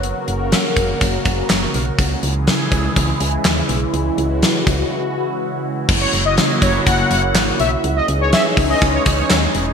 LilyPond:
<<
  \new Staff \with { instrumentName = "Analog polysynth" } { \time 4/4 \key fis \mixolydian \tempo 4 = 123 r1 | r1 | r1 | r16 cis''16 r16 dis''16 r8 cis''8 fis''8 fis''16 r8. e''16 r16 |
r16 dis''16 r16 cis''16 e''16 r8 dis''16 r16 cis''16 r16 cis''16 r4 | }
  \new Staff \with { instrumentName = "Analog synth pad" } { \time 4/4 \key fis \mixolydian << { ais'1 | gis'1 | fis'1 | fis'1 |
gis'1 | } \\ { <cis fis ais fis'>1 | <cis e gis e'>1~ | <cis e gis e'>1 | <cis fis ais e'>1 |
<e gis cis' dis'>1 | } >> }
  \new Staff \with { instrumentName = "FM bass" } { \clef bass \time 4/4 \key fis \mixolydian fis,,8 fis,,8. r16 fis,,8 fis,,8 fis,,8 fis,,8 b,,8 | cis,8 cis,8. r16 cis,8 cis,8 cis,8 dis,8 b,,8 | cis,8 cis,8. r16 cis,8 r2 | fis,,8 fis,,8. r16 fis,,8 fis,,8 fis,,8 gis,,8 b,,8 |
cis,8 cis,8. r16 cis,8 cis,8 cis,8 dis,8 e,,8 | }
  \new DrumStaff \with { instrumentName = "Drums" } \drummode { \time 4/4 hh8 hh8 <hh sn>8 <hh bd>8 <hh bd>8 <hh bd>8 <hc hh sn>8 hh8 | <hh bd>8 hh8 <hh sn>8 <hh bd>8 <hh bd>8 hh8 <hc hh sn>8 hh8 | hh8 hh8 <hh sn>8 <hh bd>8 r4 r4 | <cymc bd>8 hh8 <hh sn>8 <hh bd>8 <hh bd>8 hh8 <hc hh sn>8 hh8 |
hh8 hh8 <hh sn>8 <hho bd>8 <hh bd>8 <hh bd>8 <hc hh sn>8 hh8 | }
>>